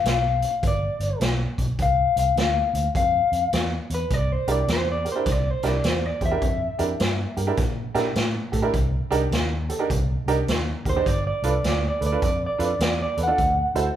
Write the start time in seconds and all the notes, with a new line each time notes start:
0.04 B1, snare, closed hi-hat
0.09 F5
0.42 closed hi-hat
0.63 G1, kick, closed hi-hat
0.67 D5
1.00 G1, closed hi-hat
1.20 B1, snare, closed hi-hat
1.58 B1, kick, closed hi-hat
1.79 C2 F5, kick, closed hi-hat
2.16 C2 F5, closed hi-hat
2.36 D2 F5, snare, closed hi-hat
2.74 D2, closed hi-hat
2.95 F2 F5, kick, closed hi-hat
3.32 F2, closed hi-hat
3.53 E2, snare, closed hi-hat
3.90 E2, closed hi-hat
3.94 B4
4.10 C2 D5, kick, closed hi-hat
4.32 C5
4.47 C2 D4 E4 G4 A#4, closed hi-hat
4.52 D5
4.68 E2, snare, closed hi-hat
4.73 C5
4.92 D5
5.05 G4 A#4, closed hi-hat
5.12 D4 E4 G4 C5
5.16 A#4
5.26 C2, kick, snare, closed hi-hat
5.31 D5
5.51 C5
5.63 C2 D4 E4 G4 A#4, snare, closed hi-hat
5.68 D5
5.84 E2 C5, snare, closed hi-hat
6.06 D5
6.21 E2 G4 C5, kick, closed hi-hat
6.25 E5
6.31 D4 E4 G4 A#4
6.42 F2, kick, closed hi-hat
6.79 F2 D4 E4 G4 A#4, closed hi-hat
7.00 G2, snare, closed hi-hat
7.37 G2 G4 A#4, closed hi-hat
7.47 D4 E4 G4 A#4
7.57 A#2, kick, snare, closed hi-hat
7.94 A#2 D4 E4 G4 A#4, snare, closed hi-hat
8.16 A2, snare, closed hi-hat
8.52 A2 G4 A4, kick, closed hi-hat
8.62 D4 E4 G4 A#4
8.73 C2, kick, closed hi-hat
9.11 C2 D4 D#4 G4 A#4, closed hi-hat
9.31 D#2, snare, closed hi-hat
9.69 G4 A4, closed hi-hat
9.79 D4 D#4 G4 A#4
9.90 C2, kick, closed hi-hat
10.26 C2 D4 D#4 G4 A#4, closed hi-hat
10.48 D#2, snare, closed hi-hat
10.85 D#2 G4 A#4 C5, kick, closed hi-hat
10.96 D4 D#4 G4 C5
11.06 G1 D5, kick, closed hi-hat
11.27 D5
11.42 C2 D4 F4 A4 B4, closed hi-hat
11.49 D5
11.64 D2, snare, closed hi-hat
11.68 D5
11.88 D5
12.01 D2 A4 B4, closed hi-hat
12.06 D5
12.12 D4 F4 A4 B4
12.22 F2 D5, kick, closed hi-hat
12.46 D5
12.58 F2 D4 F4 A4 B4, closed hi-hat
12.65 D5
12.79 E2, snare, closed hi-hat
12.84 D5
13.02 D5
13.17 E2 A4 B4, closed hi-hat
13.23 F#5
13.27 D4 F4 A4 D5
13.38 D2, kick, closed hi-hat
13.75 D2 E4 F#4 A4 C5, closed hi-hat